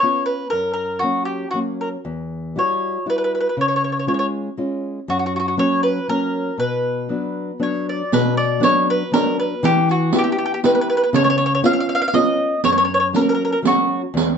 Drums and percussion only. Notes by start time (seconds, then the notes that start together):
8.13 riq
8.39 riq
8.63 riq
9.14 riq
9.64 riq
9.89 riq
10.13 riq
10.64 riq
11.14 riq
11.39 riq
11.64 riq
12.14 riq
12.64 riq
13.14 riq
13.65 riq
14.17 riq